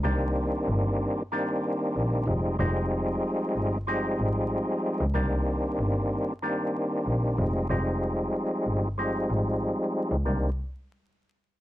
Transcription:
0.03 C2 D#3 G3 A#3 C4 D4
0.68 G1
1.32 D#3 G3 A#3 C4 D4
1.96 A#1
2.26 F1 F3 G3 G#3 C4 D#4
2.59 F1 F3 G3 G#3 C4 D#4
3.56 G1
3.87 F3 G3 G#3 C4 D#4
4.19 G#1
5.01 C#2
5.14 C2 D#3 G3 A#3 C4 D4
5.79 G1
6.42 D#3 G3 A#3 C4 D4
7.07 A#1
7.37 F1 F3 G3 G#3 C4 D#4
7.69 F1 F3 G3 G#3 C4 D#4
8.66 G1
8.98 F3 G3 G#3 C4 D#4
9.30 G#1
10.11 C#2
10.25 C2 D#3 G3 A#3 C4 D4

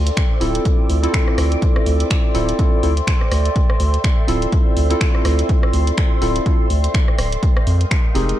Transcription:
Already playing: D2 A4 C5 D5 E5 G5 C6 D6
0.07 closed hi-hat
0.17 finger snap, kick, closed hi-hat
0.40 D1 C4 E4 F4 A4, open hi-hat
0.55 closed hi-hat
0.65 kick, closed hi-hat
0.90 D2, open hi-hat
1.03 C4 E4 F4 A4, closed hi-hat
1.14 finger snap, kick, closed hi-hat
1.28 cross-stick
1.38 D2, cross-stick, open hi-hat
1.52 closed hi-hat
1.62 kick, closed hi-hat
1.76 cross-stick
1.86 D2, open hi-hat
2.00 closed hi-hat
2.10 finger snap, kick, closed hi-hat
2.34 D1 C4 E4 F4 A4, open hi-hat
2.49 closed hi-hat
2.59 C4 E4 F4 A4, kick, closed hi-hat
2.83 D2 C4 E4 F4 A4, open hi-hat
2.97 closed hi-hat
3.07 finger snap, kick, closed hi-hat
3.21 cross-stick
3.32 D2, cross-stick, open hi-hat
3.45 closed hi-hat
3.56 C6, kick, closed hi-hat
3.70 cross-stick
3.80 D2, open hi-hat
3.94 closed hi-hat
4.04 finger snap, kick, closed hi-hat
4.28 D1 C4 E4 F4 A4, open hi-hat
4.42 closed hi-hat
4.52 kick, closed hi-hat
4.77 D2, open hi-hat
4.90 C4 E4 F4 A4, closed hi-hat
5.01 finger snap, kick, closed hi-hat
5.15 cross-stick
5.25 D2, cross-stick, open hi-hat
5.39 closed hi-hat
5.49 kick, closed hi-hat
5.63 cross-stick
5.73 D2, open hi-hat
5.87 closed hi-hat
5.98 finger snap, kick, closed hi-hat
6.21 D1 C4 E4 F4 A4, open hi-hat
6.36 closed hi-hat
6.46 C4 E4 F4 A4, kick, closed hi-hat
6.70 D2, open hi-hat
6.84 closed hi-hat
6.94 finger snap, kick, closed hi-hat
7.08 cross-stick
7.18 D1, cross-stick, open hi-hat
7.32 closed hi-hat
7.43 G#3 A#4 F5 G5 D#6, kick, closed hi-hat
7.55 D#5, cross-stick
7.67 F2, open hi-hat
7.81 closed hi-hat
7.91 finger snap, kick, closed hi-hat
8.15 F1 C4 D#4 G4 G#4, open hi-hat
8.29 closed hi-hat

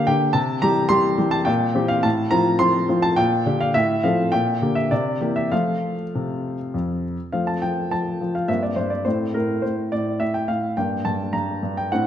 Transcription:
0.07 D3 A#3 G4 G5
0.33 C3 A5
0.62 E3 G3 G4 A#5
0.89 E3 G3 G4 C6
1.18 E3 G3 G4
1.31 A5
1.45 A#2 G5
1.75 E3 C4 G4
1.88 F5
2.03 A2 A5
2.31 F3 C4 F4 A#5
2.59 F3 C4 F4 C6
2.89 F3 C4 F4
3.02 A5
3.16 A#2 G5
3.46 D3 D4 G4
3.61 F5
3.74 A2 E5
4.04 F3 C4 A4 F5
4.32 A#2 G5
4.62 D3 A#3 G4
4.75 E5
4.91 C3 D5
5.21 E3 A#3 G4
5.36 E5
5.52 F3 A3 F4 F5
6.15 C3
6.74 F2
7.32 F3 A3 C4 F5
7.47 A5
7.62 F3 G5
7.91 F3 A5
8.21 F3
8.35 F5
8.48 G2 A#3 C4 E5
8.63 D5
8.76 G2 C5
8.90 D5
9.05 A2 A3 C4 C5
9.34 A2 A#4
9.62 A2 C5
9.92 A2 D5
10.20 A2 E5
10.34 G5
10.48 A2 F5
10.77 G2 A#3 D4 G5
11.05 G2 A5
11.33 G2 A#5
11.63 G2
11.77 G5
11.92 A2 C4 D4 F#5

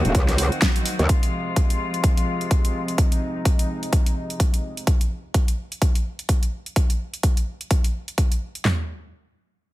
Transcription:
Already playing: D#3 F#3 C4 D#4 F#4 A#4 F5
0.05 D#1, closed hi-hat
0.15 C#2, kick, closed hi-hat
0.28 snare, closed hi-hat
0.38 open hi-hat
0.52 closed hi-hat
0.62 kick, snare, closed hi-hat
0.76 closed hi-hat
0.86 open hi-hat
0.99 D#2, closed hi-hat
1.09 C3 F3 G#3 F4, kick, closed hi-hat
1.23 closed hi-hat
1.56 kick, closed hi-hat
1.70 closed hi-hat
1.94 closed hi-hat
2.04 kick, closed hi-hat
2.17 closed hi-hat
2.41 closed hi-hat
2.51 kick, closed hi-hat
2.65 closed hi-hat
2.88 closed hi-hat
2.98 D#4, kick, closed hi-hat
3.12 closed hi-hat
3.45 kick, closed hi-hat
3.59 closed hi-hat
3.83 closed hi-hat
3.93 kick, closed hi-hat
4.06 closed hi-hat
4.30 closed hi-hat
4.40 kick, closed hi-hat
4.54 closed hi-hat
4.77 closed hi-hat
4.87 kick, closed hi-hat
5.01 closed hi-hat
5.34 kick, closed hi-hat
5.48 closed hi-hat
5.72 closed hi-hat
5.82 kick, closed hi-hat
5.95 closed hi-hat
6.19 closed hi-hat
6.29 kick, closed hi-hat
6.43 closed hi-hat
6.66 closed hi-hat
6.76 kick, closed hi-hat
6.90 closed hi-hat
7.14 closed hi-hat
7.23 kick, closed hi-hat
7.37 closed hi-hat
7.61 closed hi-hat
7.71 kick, closed hi-hat
7.84 closed hi-hat
8.08 closed hi-hat
8.18 kick, closed hi-hat
8.32 closed hi-hat
8.55 closed hi-hat
8.65 snare, clap, floor tom

